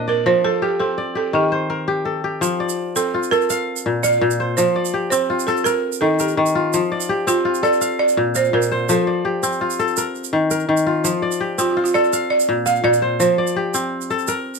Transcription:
Already playing: A#2 C4 D4 G4 D#5 F5 G5
0.08 A#4 D5
0.26 F3 C5
0.44 A4
0.62 G4
0.80 C4 A4
0.98 D5
1.15 G4 A4
1.33 D#3 G4
1.52 C5
1.70 A#4
1.88 G4
2.05 A4
2.24 G4
2.41 F3, shaker
2.60 D5
2.69 shaker
2.96 C4 A4, shaker
3.14 F4
3.23 shaker
3.31 A4 A#4, shaker
3.41 shaker
3.50 F5, shaker
3.76 shaker
3.86 A#2
4.03 D5 F5, shaker
4.21 A#2
4.31 shaker
4.40 C5
4.57 F3 C5, shaker
4.76 D5
4.85 shaker
4.94 G4
5.10 C4 C5, shaker
5.30 F4
5.39 shaker
5.47 A4, shaker
5.57 shaker
5.64 A#4, shaker
5.92 shaker
6.01 D#3 A4
6.19 G4 A#4, shaker
6.28 shaker
6.37 D#3
6.46 shaker
6.55 F4
6.73 F3, shaker
6.92 D5
7.00 shaker
7.09 G4
7.27 C4 F4, shaker
7.45 F4
7.54 shaker
7.63 A4 D5, shaker
7.73 shaker
7.81 F5, shaker
7.99 D5
8.08 shaker
8.17 A#2
8.35 C5 F5, shaker
8.44 shaker
8.53 A#2 A#4
8.62 shaker
8.72 C5
8.89 F3 A4, shaker
9.07 D5
9.25 G4
9.43 C4, shaker
9.61 F4
9.70 shaker
9.79 A4, shaker
9.88 shaker
9.97 A#4, shaker
10.15 shaker
10.24 shaker
10.33 D#3
10.51 A#4, shaker
10.60 shaker
10.69 D#3
10.77 shaker
10.87 F4
11.04 F3, shaker
11.22 D5
11.31 shaker
11.40 G4
11.58 C4 F4, shaker
11.71 F4
11.77 F4
11.84 F4, shaker
11.94 A4 D5
12.04 shaker
12.13 F5, shaker
12.30 D5
12.40 shaker
12.49 A#2
12.66 F5, shaker
12.75 shaker
12.84 A#2 D5
12.93 shaker
13.02 C5
13.20 F3 C5, shaker
13.38 D5
13.47 shaker
13.56 G4
13.74 C4, shaker
14.01 shaker
14.10 A4, shaker
14.19 shaker
14.27 A#4, shaker
14.54 shaker

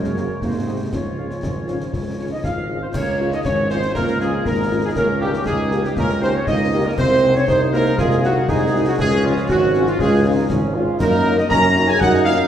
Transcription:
Already playing: F#2 C#3 G#3 A#4 C#5
0.04 snare
0.16 F#3 A#3 C#4 F#4 A#4, snare
0.42 G#2 C3 A#3 F#4 C5, concert bass drum, snare
0.66 G#3 C4 F#4 D#5
0.81 G#3
0.93 C#2 C#3 F3 F4 C#5, concert bass drum, snare
1.18 G#3 C#4 F4 F5
1.31 snare
1.43 G#1, concert bass drum, snare
1.68 G#3 C#4 F4 F5, snare
1.81 snare
1.93 C#2, concert bass drum, snare
2.18 G#3 C#4 F4 C#5 F5
2.31 D#4 D#5
2.44 G#1 F4 F5, concert bass drum, snare
2.70 G#3 C#4 F4 F5
2.81 C4 C5
2.93 C#2 A#3 C#4 C#5, concert bass drum, snare, crash
3.20 G#3 C#4 F4
3.31 D#4 D#5, snare
3.44 G#1 G#3 C#4 C#5, concert bass drum, snare
3.70 G#3 C4 C#4 F4 C5, snare
3.82 snare
3.94 C#2 A#3 F4 A#4, concert bass drum, snare
4.08 snare
4.20 G#3 C#4 F4 G#4, snare
4.45 G#1 A#3 D#4 A#4, concert bass drum, snare
4.71 G#3 C#4 F4
4.82 G#3 G#4
4.96 C#2 A#3 C#4 A#4, concert bass drum, snare
5.20 G3 A#3 D#4 G4
5.34 snare
5.46 C#2 G#3 D#4 G#4, concert bass drum, snare
5.71 A#3 D#4 G4, snare
5.83 G3 G4, snare
5.96 C#2 A#3 C#4 A#4, concert bass drum, snare
6.09 snare
6.21 A#3 C4 D#4 G4 C5, snare
6.33 C#4 C#5
6.46 C#2 A#3 D#4 D#5, concert bass drum, snare
6.72 A#3 D#4 G4
6.84 A#3 A#4
6.97 C2 C4 C5, concert bass drum, snare, crash
7.23 G#3 D#4 F#4
7.35 C#4 C#5, snare
7.47 C2 C4 D#4 C5, concert bass drum, snare
7.71 G#3 A#3 D#4 F#4 A#4, snare
7.86 snare
7.97 C2 G#3 F4 G#4, concert bass drum, snare
8.11 snare
8.22 F#3 G#3 D#4 F#4, snare
8.47 C2 G#3 D#4 G#4, concert bass drum, snare
8.74 G#3 D#4 F#4
8.86 F#3 F#4
8.99 C#2 G#3 C#4 G#4, concert bass drum, snare
9.24 F3 G#3 C#4 F4
9.37 snare
9.48 G#1 F#3 F#4, concert bass drum, snare
9.74 G#3 C#4 F4, snare
9.87 F3 F4, snare
9.99 C#2 G#3 F4 G#4, concert bass drum, snare
10.23 G#3 C#4 D#4 F4
10.50 G#1 C#4, concert bass drum, snare
10.74 G#3 C#4 F4
10.99 F#2 A#3 D#4 A#4, concert bass drum, snare, crash
11.26 F#3 A#3 D#4
11.36 D#4 D#5, snare
11.49 F#2 C#4 A#4 A#5, concert bass drum, snare
11.76 F#3 A#3 D#4, snare
11.87 G#4 G#5, snare
11.99 F#2 D#4 F#5, concert bass drum, snare
12.03 F#4
12.14 snare
12.24 F#3 A#3 D#4 F4 F5, snare

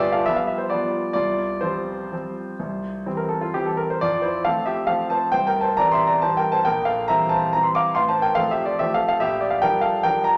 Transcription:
Already playing: G1
0.00 F4 D5
0.12 A4 F5
0.26 F3 G3 B3 E5
0.36 F5
0.47 E5
0.58 C5
0.70 F3 G3 B3 F4 D5
1.13 C2 F4 D5
1.61 F3 G3 C4 F4 C5
2.12 F3 G3 C4
2.60 C2
3.06 E3 G3 C4
3.17 A#4
3.29 A4
3.41 F4
3.54 E3 G3 C4 G4
3.66 A4
3.77 A#4
3.90 C5
4.01 F2 F4 D5
4.22 E4 C5
4.45 F3 A3 C4 A4 F5
4.66 G4 E5
4.87 F3 A3 C4 A4 F5
5.10 C5 A5
5.32 C2 C5 G5
5.47 A#4 G5
5.61 C5 A5
5.77 E3 G3 C4 D5 A#5
5.92 E5 C6
6.07 D5 A#5
6.22 E3 G3 C4 C5 A5
6.37 A#4 G5
6.52 C5 A5
6.65 A#1 A#4 G5
6.85 A4 F5
7.08 E3 G3 C4 E5 A#5
7.29 C5 A5
7.53 E3 G3 C4 A#5
7.63 C6
7.75 F5 D6
7.95 A1 F5 C6
8.08 C5 A5
8.22 A#4 G5
8.35 F3 A3 C4 A4 F5
8.51 G4 E5
8.65 F4 D5
8.79 F3 A3 C4 G4 E5
8.94 A4 F5
9.09 A4 F5
9.20 A#1 G4 E5
9.41 D5
9.51 F5
9.62 F3 G3 D4 A#4 G5
9.81 A4 F5
10.03 F3 G3 D4 A#4 G5
10.24 A#5

